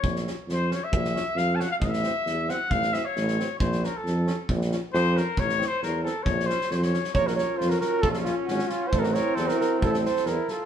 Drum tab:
SD |-oo-o-o-|-oo-o-o-|-oo-o-o-|-oo-ooo-|
BD |o-------|o-------|o-------|o-------|

SD |-oo-o-o-|-oo-o-o-|-oo-o-o-|-ooooooo|
BD |o-------|o-------|o-------|o-------|

SD |-oo-ooo-|-oo-ooo-|-oo-ooo-|-oooo-o-|
BD |o-------|o-------|o-------|o-------|